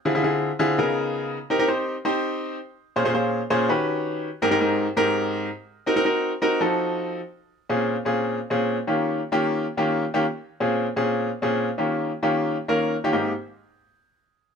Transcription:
X:1
M:4/4
L:1/16
Q:1/4=165
K:Ab
V:1 name="Upright piano"
[=D,C_F=FA] [D,C_F=FA] [D,C_F=FA]3 z [D,C_F=FA]2 [_D,_CEFAB]6 z2 | [CEGB] [CEGB] [CEGc]3 z [CEGc]6 z4 | [B,,DFAc] [B,,DFAc] [B,,DFAc]3 z [B,,DFAc]2 [E,D^FG=B]6 z2 | [A,,CEGB] [A,,CEGB] [A,,CEGB]3 z [A,,CEGB]6 z4 |
[CE_GB] [CEGB] [CEGB]3 z [CEGB]2 [F,CEG=A]6 z2 | z4 [B,,CDFA]3 z [B,,CDFA]4 z [B,,CDFA]3 | z [E,B,DFG]3 z2 [E,B,DFG]4 z [E,B,DFG]3 z [E,B,DFG] | z4 [B,,CDFA]3 z [B,,CDFA]4 z [B,,CDFA]3 |
z [E,B,DFG]3 z2 [E,B,DFG]4 z [E,B,DFB]3 z [E,B,DFG] | [A,,B,CEG]2 z12 z2 |]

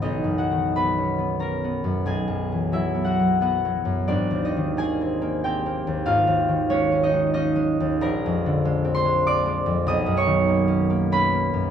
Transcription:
X:1
M:3/4
L:1/8
Q:1/4=93
K:B
V:1 name="Harp"
[Dcd] [Ff] [Bb]2 [Aa]2 | [Gg]2 [Ee] [Ff] [Ff]2 | [=D=d] [^D^d] [Gg]2 [=G=g]2 | [^E^e]2 [Cc] [Dd] [Dd]2 |
[K:A#phr] [Aa]3 [^B^b] [=d=d']2 | [dd'] [cc']3 [Bb]2 |]
V:2 name="Harp" clef=bass
(3[B,,,F,B,FB] F,, D, (3B, C B, (3C B, F,, | (3B,,, F,, E, (3F, B, F, (3B, F, F,, | (3G,,, D,, D, (3A, ^B, A, (3B, A, D,, | (3G,,, D,, D, (3G, C G, (3C G, D,, |
[K:A#phr] (3A,,, E,, =D, (3G, ^B, G, (3B, G, E,, | (3B,,, F,, D, (3A, C A, (3C A, F,, |]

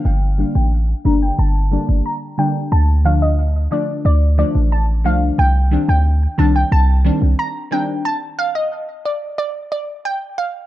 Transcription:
X:1
M:4/4
L:1/16
Q:1/4=90
K:Cdor
V:1 name="Synth pluck"
g z2 g z2 b g a3 z b z g z | a z f e2 z d2 d z d z a z f z | g z2 g z2 a g a3 z b z g z | a z f e2 z d2 d z d z g z f z |]
V:2 name="Synth pluck" clef=bass
z2 [D,G,B,D]2 z2 [D,G,B,D]2 z2 [D,G,B,D]2 z2 [D,G,B,D]2 | z2 [D,F,A,D]2 z2 [D,F,A,D]2 z2 [D,F,A,D]2 z2 [D,F,A,D]2 | z2 [E,G,CD]2 z2 [E,G,CD]2 z2 [E,G,CD]2 z2 [E,G,CD]2 | z16 |]
V:3 name="808-style bass" clef=bass
G,,,3 A,,,3 G,,,2 G,,,3 G,,, z4 | D,,6 z2 D,,3 A,,,3 C,,2 | C,,3 D,,3 C,,2 C,,3 C,, z4 | z16 |]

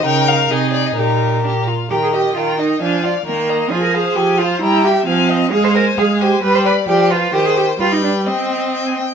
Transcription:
X:1
M:2/4
L:1/16
Q:1/4=132
K:Eb
V:1 name="Violin"
g2 f2 e2 d e | B6 z2 | b2 g2 b2 g2 | a2 f2 g2 b2 |
a2 f2 a2 f2 | b2 g2 a2 f2 | [K:Cm] f2 a2 f2 a2 | g2 =b2 g2 f2 |
g4 g4 | g4 g a g2 |]
V:2 name="Violin"
B4 A4 | G4 G2 F2 | g2 e2 g2 e2 | f2 d2 B2 e2 |
A2 c2 A2 c2 | g2 =e2 f2 _e2 | [K:Cm] A2 c2 A2 c2 | =B2 d2 d2 B2 |
c4 =B4 | e6 z2 |]
V:3 name="Cello"
_D,4 C,4 | B,,6 z2 | G A G2 F2 E2 | D2 F2 B,4 |
F B A2 G2 F2 | =E2 G2 C4 | [K:Cm] A c B2 A2 G2 | =B c B2 G2 F2 |
G A G2 F E D2 | C6 z2 |]
V:4 name="Viola" clef=bass
E4 E4 | E4 D2 z2 | E,4 E,4 | F,4 E,4 |
F,4 F,4 | G,4 F,4 | [K:Cm] A,4 A,4 | G,4 F,4 |
E,4 G,4 | C6 z2 |]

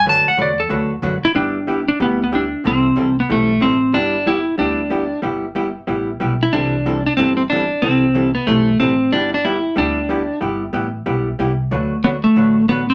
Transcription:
X:1
M:4/4
L:1/8
Q:"Swing" 1/4=185
K:G
V:1 name="Electric slide guitar"
a f d A2 z2 E | D3 D B, B, D2 | C3 B, A,2 C2 | D2 E2 D4 |
z6 z E | D3 D C C D2 | C3 B, A,2 C2 | D D E2 D4 |
z8 | z2 B, A,3 B, C |]
V:2 name="Hollow-body jazz guitar"
[D,F,A,DFB] z [D,F,A,DFB] z [D,F,A,DFB] z [D,F,A,DFB] z | [G,B,EG] z [G,B,EG] z [G,B,EG] z [G,B,EG] z | [C,E,G,CEA] z [C,E,G,CEA] z [C,E,G,CEA] z [C,E,G,CEA] z | [G,B,EG] z [G,B,EG] z [G,B,EG] z [G,B,EG] z |
[G,B,EG] z [G,B,EG] z [G,B,EG] z [G,B,EG] z | [C,E,G,CEA] z [C,E,G,CEA] z [C,E,G,CEA] z [C,E,G,CEA] z | [C,E,G,CEA] z [C,E,G,CEA] z [C,E,G,CEA] z [C,E,G,CEA] z | [G,B,EG] z [G,B,EG] z [G,B,EG] z [G,B,EG] z |
[G,B,EG] z [G,B,EG] z [G,B,EG] z [G,B,EG] z | [D,F,A,DFB] z [D,F,A,DFB] z [D,F,A,DFB] z [D,F,A,DFB] z |]
V:3 name="Upright bass" clef=bass
F,, z E,,2 D,,2 F,, z | G,,,4 D,,4 | C,,2 C,,2 B,,,2 A,,,2 | G,,,4 D,,4 |
G,,,4 A,,,2 B,,,2 | C,,4 G,,,4 | C,,4 B,,,2 A,,,2 | G,,,4 D,,4 |
G,,,2 A,,,2 B,,,2 C,,2 | D,,4 A,,,4 |]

